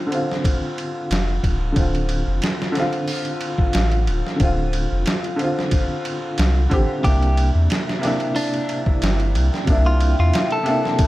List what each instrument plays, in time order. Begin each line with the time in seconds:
Already playing: upright piano D3 C4 F4
0.07 upright piano D3 C4
0.12 upright piano F4, ride
0.32 snare
0.44 kick, ride
0.78 ride
1.11 sub bass F1, snare, ride
1.43 sub bass D1, kick, ride
1.72 upright piano D3 C4, ride
1.76 sub bass D1, upright piano F4, kick
1.95 ride
2.09 ride
2.27 sub bass F1
2.42 snare, ride
2.62 snare
2.72 upright piano D3 C4, ride
2.77 upright piano F4, snare
2.93 ride
3.08 open hi-hat
3.25 ride
3.41 ride
3.58 kick
3.73 sub bass A1, snare, ride
3.92 ride
4.07 sub bass D1, ride
4.27 snare
4.36 sub bass D1, upright piano D3 C4, kick, ride
4.43 upright piano F4
4.73 ride
4.92 sub bass F1
5.06 snare, ride
5.24 ride
5.36 upright piano D3 C4, ride
5.44 upright piano F4
5.59 snare
5.71 kick, ride
6.05 ride
6.38 sub bass C2, snare, ride
6.70 sub bass A1, upright piano D3 C4 G4, kick, ride
7.00 sub bass C2, upright piano C3 A#3, ambient pad E4 D5 G5, clean electric guitar G4, kick
7.05 upright piano D4 E4, ride
7.22 ride
7.37 ride
7.55 sub bass E2
7.70 snare, ride
7.89 snare
7.99 upright piano C3 A#3
8.03 upright piano D4 E4, snare, ride
8.20 ride
8.36 clean electric guitar D4, open hi-hat
8.54 ride
8.69 ride
8.86 kick
9.02 sub bass G1, snare, ride
9.20 ride
9.35 sub bass C2, ride
9.54 snare
9.65 sub bass C2, upright piano C3 A#3, ambient pad E5, kick, ride
9.70 upright piano D4 E4
9.86 clean electric guitar F4
10.00 ride
10.19 sub bass E2, clean electric guitar F4
10.34 snare, ride
10.51 clean electric guitar A4, ride
10.63 upright piano C3 A#3, ride
10.68 upright piano D4 E4
10.85 snare
10.99 kick, ride